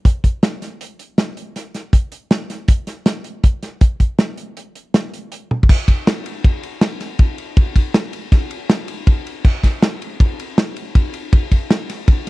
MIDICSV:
0, 0, Header, 1, 2, 480
1, 0, Start_track
1, 0, Tempo, 375704
1, 66, Time_signature, 5, 2, 24, 8
1, 15709, End_track
2, 0, Start_track
2, 0, Title_t, "Drums"
2, 65, Note_on_c, 9, 36, 100
2, 70, Note_on_c, 9, 42, 74
2, 193, Note_off_c, 9, 36, 0
2, 198, Note_off_c, 9, 42, 0
2, 305, Note_on_c, 9, 36, 68
2, 309, Note_on_c, 9, 42, 54
2, 433, Note_off_c, 9, 36, 0
2, 437, Note_off_c, 9, 42, 0
2, 547, Note_on_c, 9, 42, 71
2, 548, Note_on_c, 9, 38, 99
2, 674, Note_off_c, 9, 42, 0
2, 676, Note_off_c, 9, 38, 0
2, 793, Note_on_c, 9, 42, 60
2, 794, Note_on_c, 9, 38, 34
2, 920, Note_off_c, 9, 42, 0
2, 922, Note_off_c, 9, 38, 0
2, 1033, Note_on_c, 9, 42, 75
2, 1161, Note_off_c, 9, 42, 0
2, 1269, Note_on_c, 9, 42, 55
2, 1397, Note_off_c, 9, 42, 0
2, 1506, Note_on_c, 9, 42, 67
2, 1508, Note_on_c, 9, 38, 92
2, 1634, Note_off_c, 9, 42, 0
2, 1635, Note_off_c, 9, 38, 0
2, 1751, Note_on_c, 9, 42, 57
2, 1878, Note_off_c, 9, 42, 0
2, 1992, Note_on_c, 9, 42, 71
2, 1993, Note_on_c, 9, 38, 31
2, 2119, Note_off_c, 9, 42, 0
2, 2121, Note_off_c, 9, 38, 0
2, 2230, Note_on_c, 9, 42, 54
2, 2231, Note_on_c, 9, 38, 32
2, 2358, Note_off_c, 9, 42, 0
2, 2359, Note_off_c, 9, 38, 0
2, 2465, Note_on_c, 9, 42, 79
2, 2466, Note_on_c, 9, 36, 97
2, 2593, Note_off_c, 9, 42, 0
2, 2594, Note_off_c, 9, 36, 0
2, 2706, Note_on_c, 9, 42, 59
2, 2834, Note_off_c, 9, 42, 0
2, 2948, Note_on_c, 9, 42, 79
2, 2950, Note_on_c, 9, 38, 99
2, 3076, Note_off_c, 9, 42, 0
2, 3077, Note_off_c, 9, 38, 0
2, 3193, Note_on_c, 9, 42, 64
2, 3194, Note_on_c, 9, 38, 33
2, 3320, Note_off_c, 9, 42, 0
2, 3322, Note_off_c, 9, 38, 0
2, 3423, Note_on_c, 9, 42, 78
2, 3430, Note_on_c, 9, 36, 102
2, 3551, Note_off_c, 9, 42, 0
2, 3557, Note_off_c, 9, 36, 0
2, 3667, Note_on_c, 9, 42, 62
2, 3669, Note_on_c, 9, 38, 30
2, 3795, Note_off_c, 9, 42, 0
2, 3796, Note_off_c, 9, 38, 0
2, 3907, Note_on_c, 9, 42, 75
2, 3908, Note_on_c, 9, 38, 96
2, 4035, Note_off_c, 9, 42, 0
2, 4036, Note_off_c, 9, 38, 0
2, 4143, Note_on_c, 9, 42, 59
2, 4271, Note_off_c, 9, 42, 0
2, 4389, Note_on_c, 9, 42, 70
2, 4391, Note_on_c, 9, 36, 95
2, 4517, Note_off_c, 9, 42, 0
2, 4519, Note_off_c, 9, 36, 0
2, 4633, Note_on_c, 9, 42, 56
2, 4634, Note_on_c, 9, 38, 31
2, 4760, Note_off_c, 9, 42, 0
2, 4762, Note_off_c, 9, 38, 0
2, 4867, Note_on_c, 9, 42, 76
2, 4871, Note_on_c, 9, 36, 104
2, 4994, Note_off_c, 9, 42, 0
2, 4999, Note_off_c, 9, 36, 0
2, 5110, Note_on_c, 9, 36, 73
2, 5111, Note_on_c, 9, 42, 55
2, 5238, Note_off_c, 9, 36, 0
2, 5239, Note_off_c, 9, 42, 0
2, 5347, Note_on_c, 9, 42, 77
2, 5349, Note_on_c, 9, 38, 108
2, 5475, Note_off_c, 9, 42, 0
2, 5476, Note_off_c, 9, 38, 0
2, 5589, Note_on_c, 9, 42, 63
2, 5717, Note_off_c, 9, 42, 0
2, 5836, Note_on_c, 9, 42, 74
2, 5964, Note_off_c, 9, 42, 0
2, 6074, Note_on_c, 9, 42, 56
2, 6202, Note_off_c, 9, 42, 0
2, 6313, Note_on_c, 9, 42, 74
2, 6315, Note_on_c, 9, 38, 104
2, 6441, Note_off_c, 9, 42, 0
2, 6442, Note_off_c, 9, 38, 0
2, 6561, Note_on_c, 9, 42, 59
2, 6689, Note_off_c, 9, 42, 0
2, 6793, Note_on_c, 9, 42, 76
2, 6921, Note_off_c, 9, 42, 0
2, 7039, Note_on_c, 9, 48, 56
2, 7167, Note_off_c, 9, 48, 0
2, 7194, Note_on_c, 9, 36, 79
2, 7274, Note_off_c, 9, 36, 0
2, 7274, Note_on_c, 9, 36, 109
2, 7277, Note_on_c, 9, 49, 120
2, 7402, Note_off_c, 9, 36, 0
2, 7405, Note_off_c, 9, 49, 0
2, 7512, Note_on_c, 9, 36, 80
2, 7513, Note_on_c, 9, 51, 81
2, 7640, Note_off_c, 9, 36, 0
2, 7641, Note_off_c, 9, 51, 0
2, 7757, Note_on_c, 9, 51, 100
2, 7758, Note_on_c, 9, 38, 116
2, 7885, Note_off_c, 9, 51, 0
2, 7886, Note_off_c, 9, 38, 0
2, 7994, Note_on_c, 9, 51, 84
2, 8122, Note_off_c, 9, 51, 0
2, 8234, Note_on_c, 9, 36, 111
2, 8235, Note_on_c, 9, 51, 99
2, 8361, Note_off_c, 9, 36, 0
2, 8362, Note_off_c, 9, 51, 0
2, 8474, Note_on_c, 9, 51, 68
2, 8602, Note_off_c, 9, 51, 0
2, 8704, Note_on_c, 9, 51, 93
2, 8706, Note_on_c, 9, 38, 108
2, 8832, Note_off_c, 9, 51, 0
2, 8833, Note_off_c, 9, 38, 0
2, 8950, Note_on_c, 9, 51, 69
2, 8951, Note_on_c, 9, 38, 34
2, 9077, Note_off_c, 9, 51, 0
2, 9079, Note_off_c, 9, 38, 0
2, 9183, Note_on_c, 9, 51, 95
2, 9189, Note_on_c, 9, 36, 104
2, 9311, Note_off_c, 9, 51, 0
2, 9317, Note_off_c, 9, 36, 0
2, 9430, Note_on_c, 9, 51, 67
2, 9557, Note_off_c, 9, 51, 0
2, 9668, Note_on_c, 9, 51, 97
2, 9670, Note_on_c, 9, 36, 112
2, 9795, Note_off_c, 9, 51, 0
2, 9798, Note_off_c, 9, 36, 0
2, 9909, Note_on_c, 9, 36, 83
2, 9911, Note_on_c, 9, 51, 73
2, 10037, Note_off_c, 9, 36, 0
2, 10038, Note_off_c, 9, 51, 0
2, 10148, Note_on_c, 9, 51, 93
2, 10149, Note_on_c, 9, 38, 113
2, 10275, Note_off_c, 9, 51, 0
2, 10277, Note_off_c, 9, 38, 0
2, 10386, Note_on_c, 9, 51, 77
2, 10514, Note_off_c, 9, 51, 0
2, 10629, Note_on_c, 9, 36, 109
2, 10632, Note_on_c, 9, 51, 104
2, 10634, Note_on_c, 9, 38, 35
2, 10757, Note_off_c, 9, 36, 0
2, 10760, Note_off_c, 9, 51, 0
2, 10761, Note_off_c, 9, 38, 0
2, 10867, Note_on_c, 9, 51, 78
2, 10995, Note_off_c, 9, 51, 0
2, 11108, Note_on_c, 9, 51, 102
2, 11109, Note_on_c, 9, 38, 106
2, 11236, Note_off_c, 9, 51, 0
2, 11237, Note_off_c, 9, 38, 0
2, 11344, Note_on_c, 9, 51, 80
2, 11472, Note_off_c, 9, 51, 0
2, 11585, Note_on_c, 9, 51, 102
2, 11589, Note_on_c, 9, 36, 110
2, 11713, Note_off_c, 9, 51, 0
2, 11717, Note_off_c, 9, 36, 0
2, 11838, Note_on_c, 9, 51, 73
2, 11965, Note_off_c, 9, 51, 0
2, 12069, Note_on_c, 9, 36, 114
2, 12069, Note_on_c, 9, 49, 99
2, 12196, Note_off_c, 9, 36, 0
2, 12196, Note_off_c, 9, 49, 0
2, 12310, Note_on_c, 9, 36, 78
2, 12315, Note_on_c, 9, 51, 75
2, 12316, Note_on_c, 9, 38, 36
2, 12438, Note_off_c, 9, 36, 0
2, 12443, Note_off_c, 9, 51, 0
2, 12444, Note_off_c, 9, 38, 0
2, 12551, Note_on_c, 9, 51, 93
2, 12552, Note_on_c, 9, 38, 108
2, 12679, Note_off_c, 9, 51, 0
2, 12680, Note_off_c, 9, 38, 0
2, 12799, Note_on_c, 9, 51, 76
2, 12926, Note_off_c, 9, 51, 0
2, 13033, Note_on_c, 9, 36, 108
2, 13036, Note_on_c, 9, 51, 97
2, 13161, Note_off_c, 9, 36, 0
2, 13163, Note_off_c, 9, 51, 0
2, 13281, Note_on_c, 9, 51, 71
2, 13409, Note_off_c, 9, 51, 0
2, 13514, Note_on_c, 9, 51, 90
2, 13515, Note_on_c, 9, 38, 111
2, 13642, Note_off_c, 9, 51, 0
2, 13643, Note_off_c, 9, 38, 0
2, 13753, Note_on_c, 9, 51, 73
2, 13881, Note_off_c, 9, 51, 0
2, 13992, Note_on_c, 9, 51, 98
2, 13993, Note_on_c, 9, 36, 106
2, 14120, Note_off_c, 9, 51, 0
2, 14121, Note_off_c, 9, 36, 0
2, 14227, Note_on_c, 9, 51, 72
2, 14355, Note_off_c, 9, 51, 0
2, 14471, Note_on_c, 9, 51, 101
2, 14472, Note_on_c, 9, 36, 112
2, 14599, Note_off_c, 9, 51, 0
2, 14600, Note_off_c, 9, 36, 0
2, 14711, Note_on_c, 9, 51, 73
2, 14713, Note_on_c, 9, 36, 78
2, 14839, Note_off_c, 9, 51, 0
2, 14841, Note_off_c, 9, 36, 0
2, 14954, Note_on_c, 9, 51, 100
2, 14955, Note_on_c, 9, 38, 110
2, 15081, Note_off_c, 9, 51, 0
2, 15083, Note_off_c, 9, 38, 0
2, 15196, Note_on_c, 9, 51, 88
2, 15198, Note_on_c, 9, 38, 38
2, 15324, Note_off_c, 9, 51, 0
2, 15325, Note_off_c, 9, 38, 0
2, 15430, Note_on_c, 9, 51, 105
2, 15432, Note_on_c, 9, 36, 111
2, 15557, Note_off_c, 9, 51, 0
2, 15560, Note_off_c, 9, 36, 0
2, 15709, End_track
0, 0, End_of_file